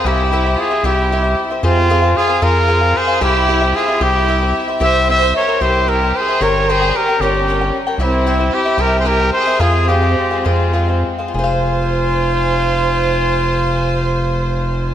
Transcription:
<<
  \new Staff \with { instrumentName = "Cavaquinho" } { \time 6/8 \key f \minor \tempo 4. = 75 <e' g' c'' e''>8 <e' g' c'' e''>16 <g' c'' e''>8 <g' c'' e''>16 <e' g' c'' e''>8 <e' g' c'' e''>16 <g' c'' e''>8 <g' c'' e''>16 | <f' aes' c'' f''>8 <f' aes' c'' f''>16 <aes' c'' f''>8 <aes' c'' f''>16 <f' aes' c'' f''>8 <f' aes' c'' f''>16 <aes' c'' f''>8 <aes' c'' f''>16 | <e' g' c'' e''>8 <e' g' c'' e''>16 <g' c'' e''>8 <g' c'' e''>16 <e' g' c'' e''>8 <e' g' c'' e''>16 <g' c'' e''>8 <g' c'' e''>16 | <e' g' c'' e''>8 <e' g' c'' e''>16 <g' c''>8 <g' c'' e''>16 <e' g' c'' e''>8 <e' g' c'' e''>16 <g' c'' e''>8 <g' c'' e''>16 |
<g' bes' des'' g''>8 <g' bes' des'' g''>16 <bes' des'' g''>8 <bes' des'' g''>16 <g' bes' des'' g''>8 <g' bes' des'' g''>16 <bes' des'' g''>8 <bes' des'' g''>16 | <e' g' c'' e''>8 <e' g' c'' e''>16 <g' c'' e''>8 <g' c'' e''>16 <e' g' c'' e''>8 <e' g' c'' e''>16 <g' c'' e''>8 <g' c'' e''>16 | <f' aes' c'' f''>8 <f' aes' c'' f''>16 <aes' c'' f''>8 <aes' c'' f''>16 <f' aes' c'' f''>8 <f' aes' c'' f''>16 <aes' c'' f''>8 <aes' c'' f''>16 | <f' aes' c'' f''>2.~ |
<f' aes' c'' f''>2. | }
  \new Staff \with { instrumentName = "Trumpet" } { \time 6/8 \key f \minor g'4 aes'8 g'4~ g'32 r16. | f'4 aes'8 bes'4 c''8 | g'4 aes'8 g'4~ g'32 r16. | e''8 e''8 des''8 c''8 bes'8 c''8 |
des''8 c''8 bes'8 g'4~ g'32 r16. | e'4 g'8 bes'16. c''32 bes'8 c''8 | aes'8 g'4 f'4~ f'32 r16. | f'2.~ |
f'2. | }
  \new Staff \with { instrumentName = "Violin section" } { \time 6/8 \key f \minor e'4 f'8 e'4~ e'32 r16. | c'4 f'8 f'4 aes'8 | e'4 f'8 e'4~ e'32 r16. | c''8 c''8 bes'8 g'8 g'8 aes'8 |
bes'8 aes'8 g'8 des'4~ des'32 r16. | c'4 e'8 g'16. aes'32 g'8 aes'8 | f'8 c'4 c'4~ c'32 r16. | c''2.~ |
c''2. | }
  \new Staff \with { instrumentName = "Violin section" } { \time 6/8 \key f \minor << { <g' e''>2. | <f' aes'>2. | <g' e''>2.~ | <g' e''>2. |
<des' bes'>2. | <g' e''>2. | <aes f'>2. | <f' c'' aes''>2.~ |
<f' c'' aes''>2. | } \\ { c'2. | c'2.~ | c'2.~ | c'2. |
g2. | c'2. | c'2. | r2. |
r2. | } >> }
  \new Staff \with { instrumentName = "Analog synth bass" } { \clef bass \time 6/8 \key f \minor c,4. c,4. | f,4. f,4. | c,4. c,4. | c,4. c,4. |
g,,4. g,,4. | c,4. c,4. | f,4. f,4. | f,,2.~ |
f,,2. | }
>>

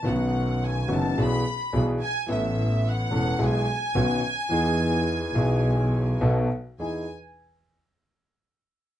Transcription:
<<
  \new Staff \with { instrumentName = "Violin section" } { \time 4/4 \key e \major \tempo 4 = 107 fis''4 gis''8 a''8 b''4 r8 gis''8 | e''4 fis''4 gis''2~ | gis''2. r4 | gis''8 r2. r8 | }
  \new Staff \with { instrumentName = "Grand piano" } { \time 4/4 \key e \major <b,, b, dis b cis' fis'>4. <fis,, fis, dis b cis' fis'>8 <b,, b, e b d' gis'>8 r8 <b,, b, e b d' gis'>8 r8 | <a,, a, e b cis' a'>4. <e,, e, e b cis' a'>8 <b,, b, e gis b gis'>8 r8 <b,, b, dis b cis' fis'>8 r8 | <e, e b dis' gis'>4. <b,, b, e b dis' gis'>4. <b,, b, fis b dis' a'>8 r8 | <e, dis' e' gis'>8 r2. r8 | }
  \new Staff \with { instrumentName = "Double bass" } { \clef bass \time 4/4 \key e \major b,,4. fis,,8 b,,8 r8 b,,8 r8 | a,,4. e,,8 b,,8 r8 b,,8 r8 | e,4. b,,4. b,,8 r8 | e,8 r2. r8 | }
>>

